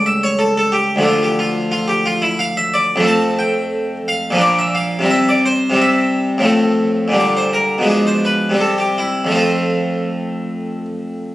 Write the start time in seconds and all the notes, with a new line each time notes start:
Already playing: C#2 G3 A3
0.06 E5
0.23 C#5
0.39 A4
0.57 A4
0.72 G4
0.96 D2 F3
1.00 A3 D4
1.08 F4
1.23 G4
1.39 F4
1.72 F4
1.88 G4
2.06 F4
2.22 E4
2.39 F5
2.57 E5
2.74 D5
2.96 F2 F3
3.00 A3 C4
3.07 A5
3.39 G5
4.08 F5
4.31 A#2 F3
4.35 A#3 D4
4.42 D5
4.59 E5
4.75 F5
4.99 C3 G3
5.04 C4
5.10 E5
5.29 D5
5.46 C5
5.70 C3 G3
5.74 C4
5.82 E5
6.38 A2 F3
6.43 A3 C4
7.08 A#2 D3
7.13 G3 D4
7.20 D5
7.37 C5
7.53 A#4
7.78 B2 F3
7.83 G#3 D4
7.90 G#4
8.07 C5
8.25 B4
8.49 C3 G3
8.54 C4
8.60 A4
8.78 G4
8.98 E4
9.25 F2 F3
9.29 A3 C4
9.36 F4